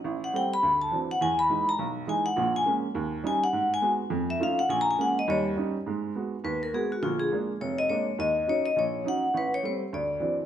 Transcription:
0.04 0.29 A1 medium
0.24 0.34 F#5 medium
0.33 0.52 G3 medium
0.33 0.53 A3 soft
0.33 0.53 C4 medium
0.33 0.52 G5 medium
0.54 0.80 B5 loud
0.63 0.88 D2 medium
0.81 0.92 A5 medium
0.91 1.10 E3 medium
0.91 1.11 F#3 soft
0.91 1.11 C4 soft
0.91 1.11 D4 medium
1.11 1.21 F#5 medium
1.21 1.46 E2 medium
1.21 1.39 G#5 medium
1.39 1.66 B5 loud
1.49 1.69 E3 medium
1.49 1.69 G#3 soft
1.49 1.69 D#4 medium
1.69 1.75 A#5 loud
1.79 2.04 B1 medium
2.07 2.26 E3 medium
2.07 2.27 G#3 medium
2.07 2.27 D#4 medium
2.07 2.26 G#5 medium
2.26 2.53 F#5 medium
2.36 2.62 A#1 medium
2.36 2.62 A#2 medium
2.56 2.66 G#5 medium
2.66 2.85 G#3 medium
2.66 2.85 A#3 soft
2.66 2.85 C#4 medium
2.95 3.20 D#2 medium
3.24 3.43 G3 medium
3.24 3.43 C#4 medium
3.24 3.43 D#4 medium
3.24 3.43 G#5 medium
3.44 3.70 F#5 loud
3.53 3.78 G#2 medium
3.74 3.80 G#5 medium
3.82 4.01 G#3 medium
3.82 4.01 B3 soft
3.82 4.01 F#4 medium
4.10 4.36 F2 medium
4.30 4.40 E5 medium
4.39 4.59 A3 medium
4.39 4.59 C#4 medium
4.39 4.59 D#4 medium
4.39 4.59 F4 medium
4.39 4.59 F5 medium
4.59 4.69 F#5 medium
4.69 4.94 A#1 medium
4.69 4.79 G#5 medium
4.81 4.89 A#5 loud
4.91 4.99 G#5 medium
4.98 5.17 G#3 medium
4.98 5.17 A#3 medium
4.98 5.18 C#4 medium
4.98 5.17 F#5 medium
5.19 5.28 D#5 medium
5.28 5.52 D#2 medium
5.28 5.52 G3 medium
5.28 5.40 C#5 medium
5.56 5.75 G3 medium
5.56 5.76 C#4 medium
5.56 5.76 D#4 medium
5.86 6.11 G#2 medium
5.86 6.11 G#3 medium
6.15 6.34 G#3 soft
6.15 6.34 B3 soft
6.15 6.34 F#4 medium
6.44 6.69 D#2 medium
6.44 6.61 B4 medium
6.63 6.73 A#4 medium
6.73 6.92 G#3 soft
6.73 6.92 B3 soft
6.73 6.92 F#4 medium
6.73 6.91 G#4 medium
6.92 7.02 F#4 medium
7.02 7.27 A#1 medium
7.02 7.27 D3 medium
7.02 7.20 F4 medium
7.20 7.26 G#4 medium
7.32 7.50 G#3 medium
7.32 7.50 A#3 soft
7.32 7.51 D4 soft
7.61 7.85 F1 medium
7.61 7.78 C#5 medium
7.78 7.89 D#5 loud
7.89 8.08 G#3 medium
7.89 8.09 A#3 soft
7.89 8.09 D4 medium
7.89 8.16 C#5 medium
8.18 8.43 D#2 medium
8.18 8.63 D#5 medium
8.47 8.66 F#3 medium
8.47 8.66 C#4 soft
8.47 8.67 D#4 medium
8.47 8.66 C#5 medium
8.66 8.76 D#5 medium
8.76 9.01 A#1 medium
8.76 9.04 C#5 medium
9.04 9.24 F#3 medium
9.04 9.24 C#4 soft
9.04 9.24 D#4 medium
9.04 9.50 F#5 medium
9.34 9.59 A1 medium
9.34 9.53 B4 medium
9.54 9.64 C#5 medium
9.63 9.82 G3 soft
9.63 9.82 A3 soft
9.63 9.82 C4 medium
9.63 9.91 C5 medium
9.93 10.17 D2 medium
9.93 10.37 D5 medium
10.20 10.39 E3 soft
10.20 10.40 F#3 soft
10.20 10.40 C4 soft
10.20 10.40 D4 medium

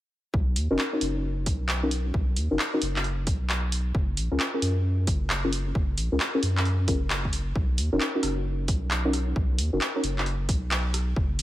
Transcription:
0.34 0.58 B1 loud
0.34 kick loud
0.56 0.68 D#2 loud
0.56 open hi-hat loud
0.71 0.77 F#1 medium
0.71 0.82 C#4 loud
0.71 0.82 D#4 medium
0.71 0.82 F#4 medium
0.71 0.82 A#4 loud
0.79 clap loud
0.93 1.80 C#4 medium
0.93 1.80 D#4 medium
0.93 1.80 F#4 medium
0.93 1.80 A#4 medium
1.01 1.48 F#1 medium
1.01 open hi-hat loud
1.46 2.12 B1 medium
1.46 kick loud
1.46 open hi-hat loud
1.69 clap loud
1.83 1.89 C#4 medium
1.83 1.89 D#4 medium
1.83 1.89 F#4 medium
1.83 1.89 A#4 medium
1.91 open hi-hat loud
2.14 2.38 B1 loud
2.14 kick loud
2.36 2.49 D#2 loud
2.36 open hi-hat loud
2.51 2.58 F#1 loud
2.51 2.57 C#4 medium
2.51 2.57 D#4 medium
2.51 2.57 F#4 medium
2.51 2.57 A#4 medium
2.59 clap loud
2.74 2.80 C#4 medium
2.74 2.80 D#4 medium
2.74 2.80 F#4 medium
2.74 2.80 A#4 loud
2.82 3.28 F#1 medium
2.82 open hi-hat loud
2.96 clap medium
3.04 open hi-hat medium
3.27 3.92 B1 medium
3.27 kick loud
3.27 open hi-hat loud
3.50 clap loud
3.72 open hi-hat loud
3.95 4.19 F#1 loud
3.95 kick loud
4.17 4.29 A#1 loud
4.17 open hi-hat loud
4.31 4.38 C#2 loud
4.31 4.43 C#4 loud
4.31 4.43 F4 medium
4.31 4.43 G#4 medium
4.31 4.43 A#4 loud
4.40 clap loud
4.54 5.41 C#4 medium
4.54 5.41 F4 medium
4.54 5.41 G#4 medium
4.54 5.41 A#4 loud
4.62 5.09 F#2 medium
4.62 open hi-hat loud
5.07 5.73 F#1 medium
5.07 kick loud
5.07 open hi-hat loud
5.30 clap loud
5.44 5.50 C#4 medium
5.44 5.50 F4 medium
5.44 5.50 G#4 medium
5.44 5.50 A#4 loud
5.53 open hi-hat loud
5.75 5.99 F#1 loud
5.75 kick loud
5.98 6.09 A#1 loud
5.98 open hi-hat loud
6.12 6.19 C#2 medium
6.12 6.18 C#4 medium
6.12 6.18 F4 medium
6.12 6.18 G#4 medium
6.12 6.18 A#4 medium
6.20 clap loud
6.35 6.41 C#4 medium
6.35 6.41 F4 medium
6.35 6.41 G#4 medium
6.35 6.41 A#4 loud
6.43 6.89 F#2 medium
6.43 open hi-hat loud
6.57 clap medium
6.65 open hi-hat medium
6.88 7.53 F#1 medium
6.88 6.99 C#4 medium
6.88 6.99 F4 medium
6.88 6.99 G#4 medium
6.88 6.99 A#4 loud
6.88 kick loud
6.88 open hi-hat medium
7.10 clap loud
7.25 kick medium
7.33 open hi-hat loud
7.56 7.80 B1 loud
7.56 kick loud
7.78 7.90 D#2 loud
7.78 open hi-hat loud
7.92 7.99 F#1 loud
7.92 8.04 C#4 loud
7.92 8.04 D#4 medium
7.92 8.04 F#4 medium
7.92 8.04 A#4 loud
8.00 clap loud
8.15 9.02 C#4 medium
8.15 9.02 D#4 medium
8.15 9.02 F#4 medium
8.15 9.02 A#4 medium
8.23 8.70 F#1 medium
8.23 cross-stick medium
8.23 open hi-hat loud
8.68 9.34 B1 medium
8.68 kick loud
8.68 open hi-hat medium
8.91 clap loud
9.05 9.11 C#4 medium
9.05 9.11 D#4 medium
9.05 9.11 F#4 medium
9.05 9.11 A#4 medium
9.13 cross-stick medium
9.13 open hi-hat loud
9.36 9.60 B1 loud
9.36 kick loud
9.58 9.70 D#2 loud
9.58 open hi-hat loud
9.73 9.80 F#1 loud
9.73 9.79 C#4 medium
9.73 9.79 D#4 medium
9.73 9.79 F#4 medium
9.73 9.79 A#4 medium
9.81 clap loud
9.96 10.02 C#4 loud
9.96 10.02 D#4 medium
9.96 10.02 F#4 medium
9.96 10.02 A#4 loud
10.03 10.50 F#1 medium
10.03 open hi-hat loud
10.18 clap medium
10.26 open hi-hat medium
10.49 11.14 B1 medium
10.49 kick medium
10.49 open hi-hat medium
10.71 clap loud
10.94 cross-stick soft
10.94 open hi-hat loud
11.16 11.40 F#1 loud
11.16 kick loud
11.39 11.42 A#1 loud
11.39 open hi-hat loud

